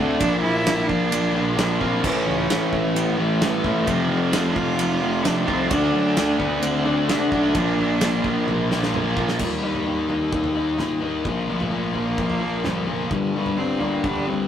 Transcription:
Already playing: picked electric bass D2, distorted electric guitar D3 A3 D4 F#4, cello C4
0.00 distorted electric guitar D3 A3 D4
0.20 picked electric bass A#1, distorted electric guitar A#2 F3 A#3 D4 F4, cello D4, kick, ride bell
0.24 distorted electric guitar A#3
0.42 picked electric bass A#1, cello E4
0.66 picked electric bass A#1, snare, ride bell
0.87 picked electric bass A#1, cello D4, kick
1.12 picked electric bass A#1, ride bell
1.35 distorted electric guitar A#2 F3 A#3
1.57 picked electric bass A#1, distorted electric guitar A#2 F3, cello D4, snare, ride bell
1.61 distorted electric guitar A#3
1.80 picked electric bass A#1, distorted electric guitar A#2 F3 A#3 D4 F4, cello C4, kick
2.02 picked electric bass A1, distorted electric guitar A2 E3 A3 C#4, cello C#4, kick, crash
2.06 distorted electric guitar A3 E4
2.28 picked electric bass C#2
2.50 picked electric bass A1, snare, ride bell
2.72 picked electric bass A1, cello A3, kick
2.94 picked electric bass A1, cello B3, ride bell
3.17 picked electric bass A1, distorted electric guitar E3 A3, cello A3
3.22 distorted electric guitar A2
3.40 picked electric bass G2, distorted electric guitar A2 E3, snare, ride bell
3.45 distorted electric guitar A3
3.64 picked electric bass G1, distorted electric guitar A2 E3 A3 C#4 E4, cello A3, kick
3.86 picked electric bass F1, distorted electric guitar F2 C3 F3 A3 C4 F4, cello C4, kick, ride bell
3.90 distorted electric guitar F3
4.09 picked electric bass F1, cello C4
4.32 picked electric bass F1, snare, ride bell
4.55 picked electric bass F1, cello F4, kick
4.79 picked electric bass F1, ride bell
5.02 distorted electric guitar F2 C3 F3
5.24 picked electric bass F1, distorted electric guitar F2 C3 F3, cello D4, snare, ride bell
5.47 picked electric bass C2, distorted electric guitar F3 A3 C4 F4, cello C4, kick
5.70 picked electric bass D2, distorted electric guitar D3 A3 D4, cello D4, kick, ride bell
5.74 distorted electric guitar F#4
5.94 picked electric bass F#2
6.16 picked electric bass D2, snare, ride bell
6.39 picked electric bass D2, cello B3, kick
6.60 picked electric bass D2, cello C4, ride bell
6.85 picked electric bass D2, distorted electric guitar D3 A3 D4
7.07 picked electric bass C3, distorted electric guitar D3, cello D4, snare, ride bell
7.11 distorted electric guitar A3 D4
7.30 picked electric bass B1, cello D4, distorted electric guitar D4 F#4, kick
7.34 distorted electric guitar D3 A3
7.54 picked electric bass A#1, distorted electric guitar A#2 F3 A#3 D4 F4, kick, ride bell
7.78 picked electric bass A#1
8.01 picked electric bass A#1, snare, ride bell
8.24 picked electric bass A#1, kick
8.47 picked electric bass A#1, high tom
8.70 distorted electric guitar F3 A#3, snare
8.74 distorted electric guitar A#2
8.83 snare
8.92 picked electric bass A#1, distorted electric guitar A#2 F3, mid tom
8.96 distorted electric guitar A#3
9.17 picked electric bass A#1, distorted electric guitar A#2 F3 A#3 D4 F4, kick
9.28 snare
9.39 picked electric bass D#2, distorted electric guitar D#3 A#3 D#4, cello G3, clean electric guitar G3, kick, floor tom, crash
9.62 picked electric bass D#2, distorted electric guitar D#3 A#3 D#4, clean electric guitar G3
9.75 floor tom, mid tom
9.86 picked electric bass D#2, distorted electric guitar D#3 A#3 D#4
10.08 distorted electric guitar D#3 A#3 D#4, clean electric guitar G3, floor tom
10.32 picked electric bass D#2, distorted electric guitar D#3 A#3 D#4, kick
10.44 floor tom
10.55 distorted electric guitar D#3 A#3 D#4, clean electric guitar G3
10.78 picked electric bass A#2, distorted electric guitar D#3 A#3 D#4, clean electric guitar G3, snare, floor tom, mid tom
11.01 picked electric bass D#2, distorted electric guitar D#3 A#3 D#4, clean electric guitar G3
11.25 picked electric bass A#1, distorted electric guitar A#2 F3 A#3, clean electric guitar D3 D4, cello F3, kick, floor tom
11.47 picked electric bass A#1, distorted electric guitar A#2 F3 A#3, cello A3, clean electric guitar D4
11.60 floor tom, mid tom
11.71 picked electric bass A#1, distorted electric guitar A#2 F3 A#3
11.94 distorted electric guitar A#2 F3 A#3, cello A#3, clean electric guitar D4, floor tom
12.18 picked electric bass A#1, distorted electric guitar A#2 F3 A#3, kick
12.30 floor tom
12.40 distorted electric guitar A#2 F3 A#3, clean electric guitar D4
12.64 picked electric bass F2, distorted electric guitar A#2 F3 A#3, clean electric guitar D3 D4, cello G3, snare, floor tom, mid tom
12.86 picked electric bass F1, distorted electric guitar A#2 F3 A#3, cello F3, clean electric guitar D4
13.10 picked electric bass G1, distorted electric guitar G2 D3 G3, clean electric guitar A#3 D4, kick, floor tom
13.33 picked electric bass G1, distorted electric guitar G2 D3 G3, clean electric guitar A#3 D4
13.46 floor tom, mid tom
13.56 picked electric bass G1, distorted electric guitar G2 D3 G3, cello C4
13.79 distorted electric guitar G2 D3 G3, cello A#3, clean electric guitar A#3 D4, floor tom
14.04 picked electric bass G1, distorted electric guitar G2 D3 G3, cello D4, kick
14.15 floor tom
14.25 distorted electric guitar G2 D3 G3, clean electric guitar A#3 D4, cello C4

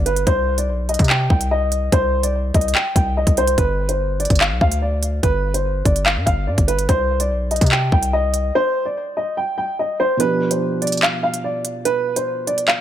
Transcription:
Already playing: 808-style bass G1
0.06 upright piano B4, closed hi-hat
0.16 closed hi-hat
0.27 808-style bass C2, upright piano C5, kick, closed hi-hat
0.58 upright piano D5, closed hi-hat
0.68 808-style bass B1
0.89 upright piano D#5, closed hi-hat
0.94 closed hi-hat
0.99 808-style bass C3, kick, closed hi-hat
1.04 closed hi-hat
1.10 upright piano G5, clap
1.30 808-style bass C2, upright piano G5, kick
1.41 closed hi-hat
1.51 upright piano D#5
1.72 closed hi-hat
1.92 808-style bass C2, upright piano C5, kick, closed hi-hat
2.23 upright piano D5, closed hi-hat
2.54 808-style bass C2, upright piano D#5, kick, closed hi-hat
2.61 closed hi-hat
2.68 closed hi-hat
2.75 upright piano G5, clap
2.96 808-style bass C2, upright piano G5, kick, closed hi-hat
3.17 upright piano D#5
3.27 808-style bass C2, kick, closed hi-hat
3.37 upright piano C5, closed hi-hat
3.48 closed hi-hat
3.58 808-style bass G1, upright piano B4, kick, closed hi-hat
3.89 upright piano C5, closed hi-hat
4.20 upright piano D5, closed hi-hat
4.25 closed hi-hat
4.30 808-style bass G1, kick, closed hi-hat
4.35 closed hi-hat
4.41 upright piano F5, clap
4.51 808-style bass B1
4.61 808-style bass D2, upright piano F5, kick
4.72 closed hi-hat
4.82 upright piano D5
5.03 closed hi-hat
5.23 808-style bass G1, upright piano B4, kick, closed hi-hat
5.54 upright piano C5, closed hi-hat
5.85 808-style bass G1, upright piano D5, kick, closed hi-hat
5.96 closed hi-hat
6.06 upright piano F5, clap
6.16 808-style bass G2
6.26 808-style bass G1, upright piano F5, kick, closed hi-hat
6.47 808-style bass G2, upright piano D5
6.58 808-style bass G1, kick, closed hi-hat
6.68 upright piano B4, closed hi-hat
6.79 closed hi-hat
6.89 808-style bass C2, upright piano C5, kick, closed hi-hat
7.20 upright piano D5, closed hi-hat
7.30 808-style bass B1
7.51 upright piano D#5, closed hi-hat
7.56 closed hi-hat
7.61 808-style bass C3, kick, closed hi-hat
7.66 closed hi-hat
7.72 upright piano G5, clap
7.92 808-style bass C2, upright piano G5, kick
8.03 closed hi-hat
8.13 upright piano D#5
8.34 closed hi-hat
8.55 upright piano C5
8.85 upright piano D5
9.17 upright piano D#5
9.37 upright piano G5
9.58 upright piano G5
9.79 upright piano D#5
10.00 upright piano C5
10.17 felt piano B2 F3 D4, upright piano B4, closed hi-hat
10.23 felt piano G4
10.51 upright piano C5, closed hi-hat
10.82 upright piano D5, closed hi-hat
10.87 closed hi-hat
10.92 closed hi-hat
10.97 closed hi-hat
11.03 upright piano F5, clap
11.23 upright piano F5
11.34 closed hi-hat
11.44 upright piano D5
11.65 closed hi-hat
11.85 upright piano B4, closed hi-hat
12.16 upright piano C5, closed hi-hat
12.47 upright piano D5, closed hi-hat
12.58 closed hi-hat
12.68 upright piano F5, clap

